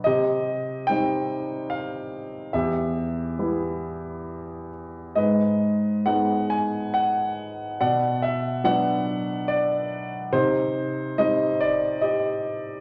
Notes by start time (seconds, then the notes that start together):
0.04 C3 G4 D#5
0.87 G3 C4 D#4 G5
1.70 F5
2.53 E2 G4 E5
3.39 G3 B3 E4
5.15 G#2 B4 D#5
6.06 G#3 B3 D#4 F#5
6.50 G#5
6.94 F#5
7.80 B2 D5 F#5
8.22 E5
8.64 F#3 B3 D4 F#5
9.48 D5
10.32 C3 D#4 C5
11.18 G3 C4 D#4 D#5
11.61 D5
12.01 G4 D#5